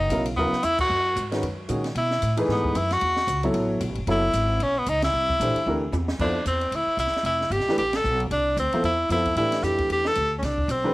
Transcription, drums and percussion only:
0.10 hi-hat pedal, ride
0.26 ride
0.53 snare
0.63 hi-hat pedal, ride
0.79 kick, crash
1.17 hi-hat pedal, ride
1.32 snare, ride
1.43 ride
1.69 hi-hat pedal, ride
1.84 snare, ride
1.95 ride
2.11 snare
2.22 hi-hat pedal, ride
2.37 ride
2.49 snare
2.64 kick
2.75 hi-hat pedal, ride
2.91 snare, ride
3.01 ride
3.17 snare
3.28 hi-hat pedal, ride
3.43 ride
3.54 ride
3.81 hi-hat pedal, ride
3.95 ride
4.07 ride
4.33 hi-hat pedal, ride
4.60 ride
4.86 hi-hat pedal, ride
5.02 snare, ride
5.29 kick
5.41 hi-hat pedal, ride
5.56 ride
5.67 high tom
5.93 hi-hat pedal, high tom
6.08 snare
6.19 kick, crash
6.46 hi-hat pedal, ride
6.61 ride
6.72 ride
6.99 hi-hat pedal, ride
7.07 snare
7.13 snare, ride
7.25 ride
7.41 snare
7.51 hi-hat pedal, ride
7.60 snare
7.69 snare
7.78 ride
7.93 snare, ride
8.05 hi-hat pedal
8.20 ride
8.31 ride
8.57 hi-hat pedal, ride
8.72 ride
8.84 ride
9.10 hi-hat pedal, ride
9.26 kick, ride
9.37 ride
9.52 snare, ride
9.63 snare, hi-hat pedal
9.78 kick, ride
9.90 ride
10.05 snare
10.15 hi-hat pedal, ride
10.43 snare, ride
10.58 kick
10.69 hi-hat pedal, ride

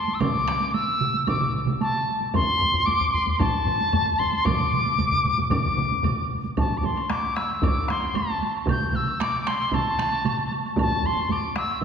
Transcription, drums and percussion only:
0.08 taiko high
0.21 taiko, taiko mid, taiko high, high woodblock
0.48 taiko rim
0.60 taiko high
0.74 taiko high, high woodblock
1.01 taiko mid
1.14 taiko high
1.27 taiko, taiko high, high woodblock
1.41 taiko mid
1.67 taiko mid, taiko high
1.81 taiko high, high woodblock
2.21 taiko high
2.34 taiko, taiko low-mid, taiko high, high woodblock
2.61 taiko low-mid
2.74 taiko low-mid
2.87 taiko low-mid, taiko high, high woodblock
3.01 taiko low-mid
3.14 taiko low-mid
3.27 taiko low-mid, taiko high
3.40 taiko, taiko low-mid, taiko high, high woodblock
3.67 taiko low-mid
3.80 taiko high
3.93 taiko low-mid, taiko high, high woodblock
4.20 taiko low-mid
4.33 taiko high
4.46 taiko, taiko low-mid, taiko mid, taiko high, high woodblock
4.59 taiko low-mid, taiko mid
4.72 taiko low-mid, taiko mid
4.86 taiko high
4.98 taiko low-mid, taiko mid, taiko high, high woodblock
5.12 taiko low-mid, taiko mid
5.24 taiko low-mid, taiko mid, taiko high
5.38 taiko low-mid, taiko mid, taiko high
5.50 taiko, taiko low-mid, taiko mid, taiko high, high woodblock
5.64 taiko low-mid, taiko mid
5.77 taiko low-mid, taiko mid
5.91 taiko high
6.03 taiko low-mid, taiko mid, taiko high, high woodblock
6.44 taiko high
6.57 taiko, taiko low-mid, taiko high, high woodblock
6.83 taiko low-mid, taiko high, high woodblock
6.97 taiko high, high woodblock
7.10 taiko rim, taiko high, high woodblock
7.24 taiko high
7.36 taiko rim, taiko high, high woodblock
7.51 high woodblock
7.62 taiko, taiko low-mid, taiko high, high woodblock
7.77 taiko high
7.89 taiko rim, taiko high, high woodblock
8.02 taiko high, high woodblock
8.15 taiko low-mid, taiko high, high woodblock
8.30 taiko high
8.42 taiko high, high woodblock
8.56 taiko high, high woodblock
8.67 taiko, taiko mid, taiko high, high woodblock
8.82 taiko high
8.93 taiko mid, taiko high, high woodblock
9.07 taiko high, high woodblock
9.20 taiko rim, taiko high, high woodblock
9.34 taiko high
9.47 taiko rim, taiko high, high woodblock
9.61 high woodblock
9.72 taiko, taiko mid, taiko high, high woodblock
9.86 taiko high
9.99 taiko rim, taiko high, high woodblock
10.12 taiko high, high woodblock
10.25 taiko mid, taiko high, high woodblock
10.39 taiko high
10.51 taiko high, high woodblock
10.65 taiko high, high woodblock
10.77 taiko, taiko low-mid, taiko high, high woodblock
10.90 taiko high
11.03 taiko low-mid, taiko high, high woodblock
11.16 taiko low-mid, taiko high, high woodblock
11.29 taiko low-mid, taiko high, high woodblock
11.43 taiko high
11.56 taiko rim, taiko high, high woodblock
11.71 high woodblock

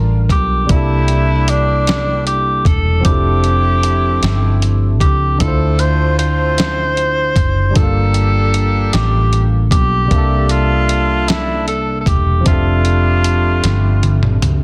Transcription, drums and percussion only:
0.29 kick, closed hi-hat
0.69 kick, closed hi-hat
1.08 closed hi-hat
1.48 closed hi-hat
1.87 snare, closed hi-hat
2.27 closed hi-hat
2.65 kick, closed hi-hat
3.05 kick, closed hi-hat
3.44 closed hi-hat
3.83 closed hi-hat
4.23 snare, closed hi-hat
4.62 closed hi-hat
5.00 kick, closed hi-hat
5.40 kick, closed hi-hat
5.79 closed hi-hat
6.19 closed hi-hat
6.58 snare, closed hi-hat
6.97 closed hi-hat
7.36 kick, closed hi-hat
7.76 kick, closed hi-hat
8.14 closed hi-hat
8.54 closed hi-hat
8.93 snare, closed hi-hat
9.33 closed hi-hat
9.71 kick, closed hi-hat
10.11 kick, closed hi-hat
10.49 closed hi-hat
10.89 closed hi-hat
11.28 snare, closed hi-hat
11.68 closed hi-hat
12.06 kick, closed hi-hat
12.46 kick, closed hi-hat
12.85 closed hi-hat
13.24 closed hi-hat
13.64 snare, closed hi-hat
14.03 closed hi-hat, high tom
14.23 mid tom
14.42 closed hi-hat, mid tom

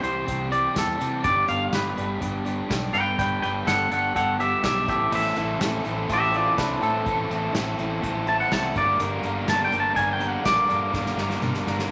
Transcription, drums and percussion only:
0.04 closed hi-hat
0.28 kick, closed hi-hat
0.52 closed hi-hat
0.76 kick, snare, closed hi-hat, tambourine
1.01 closed hi-hat
1.24 kick, closed hi-hat
1.48 closed hi-hat
1.73 snare, closed hi-hat, tambourine
1.98 closed hi-hat
2.22 kick, closed hi-hat
2.46 closed hi-hat
2.70 kick, snare, closed hi-hat, tambourine
2.94 closed hi-hat
3.19 kick, closed hi-hat
3.43 closed hi-hat
3.67 snare, closed hi-hat, tambourine
3.92 closed hi-hat
4.16 kick, closed hi-hat
4.40 closed hi-hat
4.64 kick, snare, closed hi-hat, tambourine
4.88 kick, closed hi-hat
5.12 crash
5.36 closed hi-hat
5.61 snare, closed hi-hat, tambourine
5.85 closed hi-hat
6.09 kick, closed hi-hat
6.34 closed hi-hat
6.58 kick, snare, closed hi-hat, tambourine
6.82 closed hi-hat
7.06 kick, closed hi-hat
7.31 closed hi-hat
7.55 snare, closed hi-hat, tambourine
7.79 closed hi-hat
8.03 kick, closed hi-hat
8.27 closed hi-hat
8.52 kick, snare, closed hi-hat, tambourine
8.76 kick, closed hi-hat
9.00 closed hi-hat
9.23 closed hi-hat
9.48 snare, closed hi-hat, tambourine
9.72 closed hi-hat
9.96 kick, closed hi-hat
10.21 closed hi-hat
10.45 kick, snare, closed hi-hat, tambourine
10.70 closed hi-hat
10.93 kick, snare
11.06 snare
11.18 snare
11.30 snare
11.42 mid tom, tambourine
11.54 snare
11.67 snare
11.79 snare

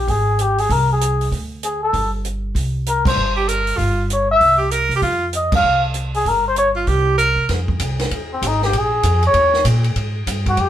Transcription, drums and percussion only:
0.08 kick, open hi-hat
0.39 closed hi-hat
0.58 open hi-hat
0.70 kick, open hi-hat
1.01 closed hi-hat
1.21 open hi-hat
1.32 kick, open hi-hat
1.63 closed hi-hat
1.93 kick, open hi-hat
2.25 closed hi-hat
2.55 kick, open hi-hat
2.86 closed hi-hat
3.05 kick, crash
3.48 closed hi-hat
3.67 open hi-hat
3.78 kick, open hi-hat
4.10 closed hi-hat
4.40 kick, open hi-hat
4.71 closed hi-hat
4.91 open hi-hat
5.02 kick, open hi-hat
5.33 closed hi-hat
5.52 kick, crash
5.94 closed hi-hat
6.14 open hi-hat
6.26 kick, open hi-hat
6.56 closed hi-hat
6.87 kick, open hi-hat
7.18 closed hi-hat
7.49 kick, snare, ride
7.68 kick
7.79 kick, hi-hat pedal, ride
7.99 snare, ride
8.11 kick, ride
8.42 kick, hi-hat pedal, ride
8.62 snare
8.73 kick, ride
9.03 kick, hi-hat pedal, ride
9.23 ride
9.34 kick, ride
9.54 snare
9.65 kick, hi-hat pedal, ride
9.84 ride
9.96 kick, ride
10.27 kick, hi-hat pedal, ride
10.46 kick, ride
10.57 kick, ride

